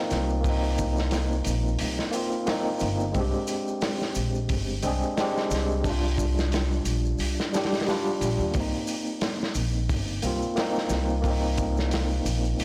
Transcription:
Already playing: A#3 C4 D#4 F4
0.11 C2, snare, open hi-hat, maracas
0.29 maracas
0.41 A#3, kick, open hi-hat
0.45 C4, maracas
0.50 D#4
0.64 maracas
0.78 kick, open hi-hat, maracas
0.97 snare, maracas
1.11 snare, open hi-hat, maracas
1.32 maracas
1.44 A#1, open hi-hat, maracas
1.68 maracas
1.79 C2, open hi-hat, maracas
1.99 snare, maracas
2.11 A#3 C4, open hi-hat, maracas
2.16 F4
2.32 maracas
2.46 A#3 C4, snare, open hi-hat, maracas
2.51 D#4
2.66 maracas
2.80 G1, open hi-hat, maracas
3.00 maracas
3.12 C2 G#3 C4, kick, open hi-hat, maracas
3.18 D4 G4
3.34 maracas
3.47 open hi-hat, maracas
3.68 maracas
3.81 snare, open hi-hat, maracas
4.00 snare, maracas
4.15 A#1, open hi-hat, maracas
4.35 maracas
4.49 G1, kick, open hi-hat, maracas
4.69 maracas
4.82 C2 G#3 C4 D4, open hi-hat, maracas
4.87 G#4
5.03 maracas
5.17 G#3 C4 D4, snare, open hi-hat, maracas
5.21 G4
5.37 snare, maracas
5.51 C2, snare, open hi-hat, maracas
5.70 maracas
5.81 G3, kick, maracas
5.85 D4, open hi-hat
5.90 F4
6.04 maracas
6.18 kick, open hi-hat, maracas
6.38 snare, maracas
6.52 snare, open hi-hat, maracas
6.72 maracas
6.85 A#1, open hi-hat, maracas
7.05 maracas
7.18 C2, open hi-hat, maracas
7.40 snare, maracas
7.53 G3 D4 G4, snare, open hi-hat, maracas
7.63 snare, open hi-hat
7.72 snare, open hi-hat, maracas
7.80 snare, open hi-hat
7.87 G3 D4, snare, open hi-hat, maracas
7.91 F4
8.06 maracas
8.21 A#1, open hi-hat, maracas
8.39 D#2, maracas
8.51 C2 A#3, kick, open hi-hat, maracas
8.56 C4
8.60 D#4
8.74 maracas
8.87 open hi-hat, maracas
9.06 maracas
9.21 snare, open hi-hat, maracas
9.41 snare, maracas
9.54 A#1, open hi-hat, maracas
9.73 maracas
9.89 G1, kick, open hi-hat, maracas
10.08 maracas
10.22 C2 A#3 C4, open hi-hat, maracas
10.27 F4
10.42 maracas
10.56 A#3 C4, snare, open hi-hat, maracas
10.60 D#4
10.75 snare, maracas
10.89 C2, snare, open hi-hat, maracas
11.09 maracas
11.21 A#3, kick, open hi-hat, maracas
11.26 C4
11.30 D#4
11.43 maracas
11.57 kick, open hi-hat, maracas
11.77 snare, maracas
11.91 snare, open hi-hat, maracas
12.11 maracas
12.26 A#1, open hi-hat, maracas
12.45 maracas
12.59 C2, open hi-hat, maracas

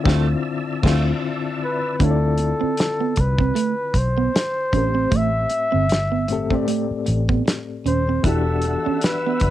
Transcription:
Already playing: D3 C4 E4 F4 C5 D5 E5 A5 E6
0.04 D2 D3 A3 C4 E4 F4 A4, kick, snare
0.82 D2 D3 A3 C4 E4 F4 A4, kick, snare, crash
1.65 B4
2.00 D2 D3 C4 D4 E4 F4, kick, closed hi-hat
2.04 A4 C#5
2.11 D5
2.38 muted clean electric guitar stroke, closed hi-hat
2.61 C4, muted fingered electric bass stroke
2.77 snare, closed hi-hat
3.01 B3
3.16 C2, muted clean electric guitar stroke, kick, closed hi-hat
3.21 B4
3.39 C4, kick
3.55 A3, closed hi-hat
3.94 B1, muted clean electric guitar stroke, kick, closed hi-hat
3.98 C5
4.18 B3
4.35 muted clean electric guitar stroke, snare, closed hi-hat
4.73 A1 A2 A3 C4 C#4 G4, kick, closed hi-hat
4.77 A#4
4.84 C5
4.95 C4
5.11 A1 A3, kick, closed hi-hat
5.16 E5
5.50 muted clean electric guitar stroke, closed hi-hat
5.72 G1 C4
5.89 snare, closed hi-hat
6.12 B3
6.28 A2 A3 C4 G4, muted clean electric guitar stroke, closed hi-hat
6.33 A4
6.51 A2 A3 C4 G4, kick
6.55 D5
6.68 A3, closed hi-hat
6.91 muted fingered electric bass stroke
7.06 A1, muted clean electric guitar stroke, closed hi-hat
7.29 B3, kick
7.46 muted clean electric guitar stroke, snare, closed hi-hat
7.86 D#1 C#4 C5, closed hi-hat
8.09 C4
8.23 E1 E3 B3 D4 E4 F#4 A4 E5 F#5 E6, kick, closed hi-hat
8.28 G4
8.62 muted clean electric guitar stroke, closed hi-hat
8.86 C#4, muted fingered electric bass stroke
9.01 B4, snare, closed hi-hat
9.26 B3
9.40 F#1, kick, closed hi-hat
9.44 muted clean electric guitar stroke

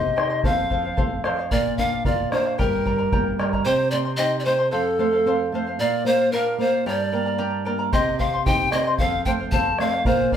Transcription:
Already playing: C3 G4 C5 D#5 G5 C6
0.16 D#4 C5 D#5 G5 C6, bombo rim
0.30 C5 D#5 C6
0.44 F2 A4 C5 F5, bombo low
0.70 F3 A4 C5 F5, bombo low
0.85 C5 F5
0.97 A3 A4 C5 F5, bombo low
1.24 F3 A4 C5 F5, bombo rim
1.39 C5 F5
1.51 A#2 A#4 D5 F5, bombo low
1.78 D4 A#4 D5 F5, bombo low
1.92 D5 F5
2.05 F4 A#4 D5 F5, bombo low
2.32 D4 A#4 C5 D5 F5, bombo rim
2.45 D5 F5
2.58 G2 G4 A#4 D5 G5 A#5, bombo low
2.85 G3 A#4 D5 G5 A#5, bombo low
2.98 A#4 D5 A#5
3.12 A#3 G4 A#4 D5 G5 A#5, bombo low
3.39 G3 A#4 D5 G5 A#5, bombo rim
3.53 A#4 D5 A#5, bombo low
3.65 C3 G4 C5 D#5 G5 C6
3.91 C4 C5 D5 D#5 G5 C6
4.05 C5 D#5 C6
4.17 D#4 G4 C5 D#5 G5 C6
4.40 D5
4.45 C4 C5 D#5 G5 C6
4.58 C5 D#5 C6
4.71 F2 A4 C5 F5
4.99 A3 A4 C5 F5
5.13 C5 F5
5.26 C4 A4 C5 F5
5.52 A3 A4 C5 F5
5.67 C5 F5
5.79 A#2 A#4 D5 F5
6.05 A#3 A#4 C5 D5 F5
6.21 D5 F5
6.32 D4 A#4 D5 F5
6.58 A#3 A#4 C5 D5 F5
6.73 D5 F5
6.86 G2 G4 A#4 D5 G5 A#5
7.12 A#3 A#4 D5 G5 A#5
7.26 A#4 D5 A#5
7.38 D4 G4 A#4 D5 G5 A#5
7.65 A#3 A#4 D5 G5 A#5
7.79 A#4 D5 A#5
7.92 C3 G4 C5 D#5 G5 C6, bombo low
8.19 C4 C5 D#5 F5 G5 C6, bombo low
8.33 C5 D#5 C6
8.46 D#4 G4 C5 D#5 G5 C6, bombo low
8.72 C4 C5 D#5 G5 C6, bombo rim
8.86 C5 D#5 C6
8.98 F2 A4 C5 F5, bombo low
9.25 A3 A4 C5 F5 G5, bombo low
9.39 C5 F5
9.52 C4 A4 C5 F5 A5, bombo low
9.79 A3 A4 C5 F5, bombo rim
9.93 C5 F5
10.05 A#2 A#4 C5 D5 F5, bombo low
10.31 D4 A#4 D5 F5, bombo low

